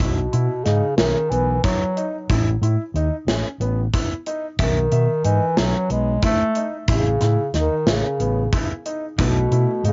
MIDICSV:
0, 0, Header, 1, 6, 480
1, 0, Start_track
1, 0, Time_signature, 7, 3, 24, 8
1, 0, Tempo, 656455
1, 7258, End_track
2, 0, Start_track
2, 0, Title_t, "Grand piano"
2, 0, Program_c, 0, 0
2, 0, Note_on_c, 0, 64, 71
2, 126, Note_off_c, 0, 64, 0
2, 239, Note_on_c, 0, 64, 60
2, 368, Note_off_c, 0, 64, 0
2, 479, Note_on_c, 0, 63, 76
2, 608, Note_off_c, 0, 63, 0
2, 720, Note_on_c, 0, 61, 69
2, 848, Note_off_c, 0, 61, 0
2, 959, Note_on_c, 0, 59, 60
2, 1088, Note_off_c, 0, 59, 0
2, 1197, Note_on_c, 0, 64, 69
2, 1326, Note_off_c, 0, 64, 0
2, 1437, Note_on_c, 0, 63, 62
2, 1566, Note_off_c, 0, 63, 0
2, 1679, Note_on_c, 0, 64, 77
2, 1808, Note_off_c, 0, 64, 0
2, 1921, Note_on_c, 0, 64, 58
2, 2049, Note_off_c, 0, 64, 0
2, 2163, Note_on_c, 0, 63, 66
2, 2291, Note_off_c, 0, 63, 0
2, 2399, Note_on_c, 0, 61, 64
2, 2527, Note_off_c, 0, 61, 0
2, 2637, Note_on_c, 0, 59, 58
2, 2766, Note_off_c, 0, 59, 0
2, 2880, Note_on_c, 0, 64, 78
2, 3008, Note_off_c, 0, 64, 0
2, 3121, Note_on_c, 0, 63, 66
2, 3249, Note_off_c, 0, 63, 0
2, 3358, Note_on_c, 0, 76, 74
2, 3487, Note_off_c, 0, 76, 0
2, 3598, Note_on_c, 0, 76, 63
2, 3726, Note_off_c, 0, 76, 0
2, 3840, Note_on_c, 0, 63, 68
2, 3968, Note_off_c, 0, 63, 0
2, 4080, Note_on_c, 0, 61, 76
2, 4208, Note_off_c, 0, 61, 0
2, 4319, Note_on_c, 0, 59, 57
2, 4447, Note_off_c, 0, 59, 0
2, 4555, Note_on_c, 0, 64, 73
2, 4684, Note_off_c, 0, 64, 0
2, 4800, Note_on_c, 0, 63, 63
2, 4928, Note_off_c, 0, 63, 0
2, 5037, Note_on_c, 0, 64, 80
2, 5166, Note_off_c, 0, 64, 0
2, 5273, Note_on_c, 0, 64, 62
2, 5403, Note_off_c, 0, 64, 0
2, 5517, Note_on_c, 0, 63, 66
2, 5646, Note_off_c, 0, 63, 0
2, 5757, Note_on_c, 0, 61, 72
2, 5886, Note_off_c, 0, 61, 0
2, 6000, Note_on_c, 0, 59, 55
2, 6128, Note_off_c, 0, 59, 0
2, 6239, Note_on_c, 0, 64, 71
2, 6368, Note_off_c, 0, 64, 0
2, 6477, Note_on_c, 0, 63, 65
2, 6606, Note_off_c, 0, 63, 0
2, 6722, Note_on_c, 0, 64, 72
2, 6850, Note_off_c, 0, 64, 0
2, 6961, Note_on_c, 0, 64, 55
2, 7089, Note_off_c, 0, 64, 0
2, 7200, Note_on_c, 0, 63, 76
2, 7258, Note_off_c, 0, 63, 0
2, 7258, End_track
3, 0, Start_track
3, 0, Title_t, "Hollow-body jazz guitar"
3, 0, Program_c, 1, 26
3, 6714, Note_on_c, 1, 47, 59
3, 6720, Note_on_c, 1, 57, 52
3, 6727, Note_on_c, 1, 66, 54
3, 6734, Note_on_c, 1, 71, 61
3, 7258, Note_off_c, 1, 47, 0
3, 7258, Note_off_c, 1, 57, 0
3, 7258, Note_off_c, 1, 66, 0
3, 7258, Note_off_c, 1, 71, 0
3, 7258, End_track
4, 0, Start_track
4, 0, Title_t, "Bass clarinet"
4, 0, Program_c, 2, 71
4, 0, Note_on_c, 2, 47, 66
4, 470, Note_on_c, 2, 49, 80
4, 481, Note_off_c, 2, 47, 0
4, 699, Note_off_c, 2, 49, 0
4, 703, Note_on_c, 2, 51, 82
4, 947, Note_on_c, 2, 52, 84
4, 958, Note_off_c, 2, 51, 0
4, 1190, Note_off_c, 2, 52, 0
4, 1194, Note_on_c, 2, 54, 84
4, 1531, Note_off_c, 2, 54, 0
4, 3363, Note_on_c, 2, 51, 70
4, 3834, Note_on_c, 2, 52, 83
4, 3845, Note_off_c, 2, 51, 0
4, 4081, Note_on_c, 2, 54, 91
4, 4092, Note_off_c, 2, 52, 0
4, 4319, Note_off_c, 2, 54, 0
4, 4322, Note_on_c, 2, 56, 74
4, 4543, Note_off_c, 2, 56, 0
4, 4566, Note_on_c, 2, 57, 100
4, 4897, Note_off_c, 2, 57, 0
4, 5045, Note_on_c, 2, 49, 80
4, 5492, Note_off_c, 2, 49, 0
4, 5530, Note_on_c, 2, 51, 74
4, 5773, Note_on_c, 2, 49, 69
4, 5784, Note_off_c, 2, 51, 0
4, 6245, Note_off_c, 2, 49, 0
4, 6739, Note_on_c, 2, 47, 68
4, 7180, Note_off_c, 2, 47, 0
4, 7211, Note_on_c, 2, 49, 75
4, 7258, Note_off_c, 2, 49, 0
4, 7258, End_track
5, 0, Start_track
5, 0, Title_t, "Fingered electric bass"
5, 0, Program_c, 3, 33
5, 0, Note_on_c, 3, 35, 74
5, 181, Note_off_c, 3, 35, 0
5, 244, Note_on_c, 3, 47, 79
5, 334, Note_off_c, 3, 47, 0
5, 482, Note_on_c, 3, 44, 72
5, 572, Note_off_c, 3, 44, 0
5, 715, Note_on_c, 3, 35, 71
5, 808, Note_off_c, 3, 35, 0
5, 959, Note_on_c, 3, 35, 70
5, 1141, Note_off_c, 3, 35, 0
5, 1679, Note_on_c, 3, 33, 80
5, 1861, Note_off_c, 3, 33, 0
5, 1913, Note_on_c, 3, 45, 77
5, 2006, Note_off_c, 3, 45, 0
5, 2151, Note_on_c, 3, 39, 64
5, 2245, Note_off_c, 3, 39, 0
5, 2389, Note_on_c, 3, 33, 71
5, 2484, Note_off_c, 3, 33, 0
5, 2633, Note_on_c, 3, 33, 87
5, 2817, Note_off_c, 3, 33, 0
5, 3355, Note_on_c, 3, 35, 85
5, 3539, Note_off_c, 3, 35, 0
5, 3597, Note_on_c, 3, 47, 81
5, 3689, Note_off_c, 3, 47, 0
5, 3835, Note_on_c, 3, 44, 65
5, 3928, Note_off_c, 3, 44, 0
5, 4077, Note_on_c, 3, 35, 72
5, 4168, Note_off_c, 3, 35, 0
5, 4314, Note_on_c, 3, 35, 80
5, 4498, Note_off_c, 3, 35, 0
5, 5033, Note_on_c, 3, 33, 74
5, 5217, Note_off_c, 3, 33, 0
5, 5276, Note_on_c, 3, 45, 73
5, 5368, Note_off_c, 3, 45, 0
5, 5512, Note_on_c, 3, 39, 66
5, 5605, Note_off_c, 3, 39, 0
5, 5753, Note_on_c, 3, 33, 81
5, 5846, Note_off_c, 3, 33, 0
5, 5995, Note_on_c, 3, 33, 81
5, 6178, Note_off_c, 3, 33, 0
5, 6716, Note_on_c, 3, 35, 80
5, 6900, Note_off_c, 3, 35, 0
5, 6957, Note_on_c, 3, 47, 72
5, 7049, Note_off_c, 3, 47, 0
5, 7193, Note_on_c, 3, 44, 70
5, 7258, Note_off_c, 3, 44, 0
5, 7258, End_track
6, 0, Start_track
6, 0, Title_t, "Drums"
6, 0, Note_on_c, 9, 36, 103
6, 1, Note_on_c, 9, 42, 80
6, 71, Note_off_c, 9, 36, 0
6, 74, Note_off_c, 9, 42, 0
6, 241, Note_on_c, 9, 42, 59
6, 314, Note_off_c, 9, 42, 0
6, 479, Note_on_c, 9, 38, 28
6, 479, Note_on_c, 9, 42, 57
6, 552, Note_off_c, 9, 38, 0
6, 552, Note_off_c, 9, 42, 0
6, 716, Note_on_c, 9, 38, 97
6, 716, Note_on_c, 9, 42, 76
6, 789, Note_off_c, 9, 38, 0
6, 789, Note_off_c, 9, 42, 0
6, 962, Note_on_c, 9, 42, 51
6, 1036, Note_off_c, 9, 42, 0
6, 1198, Note_on_c, 9, 36, 98
6, 1201, Note_on_c, 9, 42, 74
6, 1271, Note_off_c, 9, 36, 0
6, 1274, Note_off_c, 9, 42, 0
6, 1441, Note_on_c, 9, 42, 57
6, 1514, Note_off_c, 9, 42, 0
6, 1679, Note_on_c, 9, 36, 97
6, 1682, Note_on_c, 9, 42, 68
6, 1752, Note_off_c, 9, 36, 0
6, 1755, Note_off_c, 9, 42, 0
6, 1924, Note_on_c, 9, 42, 54
6, 1997, Note_off_c, 9, 42, 0
6, 2163, Note_on_c, 9, 42, 49
6, 2236, Note_off_c, 9, 42, 0
6, 2400, Note_on_c, 9, 38, 98
6, 2400, Note_on_c, 9, 42, 74
6, 2474, Note_off_c, 9, 38, 0
6, 2474, Note_off_c, 9, 42, 0
6, 2639, Note_on_c, 9, 42, 47
6, 2712, Note_off_c, 9, 42, 0
6, 2878, Note_on_c, 9, 36, 88
6, 2879, Note_on_c, 9, 42, 75
6, 2952, Note_off_c, 9, 36, 0
6, 2952, Note_off_c, 9, 42, 0
6, 3118, Note_on_c, 9, 42, 66
6, 3191, Note_off_c, 9, 42, 0
6, 3355, Note_on_c, 9, 42, 77
6, 3356, Note_on_c, 9, 36, 90
6, 3428, Note_off_c, 9, 42, 0
6, 3429, Note_off_c, 9, 36, 0
6, 3595, Note_on_c, 9, 42, 57
6, 3668, Note_off_c, 9, 42, 0
6, 3835, Note_on_c, 9, 42, 63
6, 3908, Note_off_c, 9, 42, 0
6, 4075, Note_on_c, 9, 38, 99
6, 4075, Note_on_c, 9, 42, 73
6, 4148, Note_off_c, 9, 38, 0
6, 4148, Note_off_c, 9, 42, 0
6, 4314, Note_on_c, 9, 42, 58
6, 4387, Note_off_c, 9, 42, 0
6, 4551, Note_on_c, 9, 42, 69
6, 4553, Note_on_c, 9, 36, 93
6, 4624, Note_off_c, 9, 42, 0
6, 4626, Note_off_c, 9, 36, 0
6, 4791, Note_on_c, 9, 42, 63
6, 4864, Note_off_c, 9, 42, 0
6, 5030, Note_on_c, 9, 42, 78
6, 5032, Note_on_c, 9, 36, 90
6, 5103, Note_off_c, 9, 42, 0
6, 5106, Note_off_c, 9, 36, 0
6, 5271, Note_on_c, 9, 38, 32
6, 5271, Note_on_c, 9, 42, 59
6, 5344, Note_off_c, 9, 38, 0
6, 5344, Note_off_c, 9, 42, 0
6, 5513, Note_on_c, 9, 38, 32
6, 5513, Note_on_c, 9, 42, 59
6, 5586, Note_off_c, 9, 38, 0
6, 5586, Note_off_c, 9, 42, 0
6, 5753, Note_on_c, 9, 38, 101
6, 5753, Note_on_c, 9, 42, 70
6, 5826, Note_off_c, 9, 38, 0
6, 5826, Note_off_c, 9, 42, 0
6, 5996, Note_on_c, 9, 42, 53
6, 6069, Note_off_c, 9, 42, 0
6, 6235, Note_on_c, 9, 36, 98
6, 6235, Note_on_c, 9, 42, 62
6, 6308, Note_off_c, 9, 36, 0
6, 6308, Note_off_c, 9, 42, 0
6, 6476, Note_on_c, 9, 42, 54
6, 6549, Note_off_c, 9, 42, 0
6, 6717, Note_on_c, 9, 36, 98
6, 6718, Note_on_c, 9, 42, 72
6, 6790, Note_off_c, 9, 36, 0
6, 6792, Note_off_c, 9, 42, 0
6, 6959, Note_on_c, 9, 42, 57
6, 7032, Note_off_c, 9, 42, 0
6, 7199, Note_on_c, 9, 42, 61
6, 7258, Note_off_c, 9, 42, 0
6, 7258, End_track
0, 0, End_of_file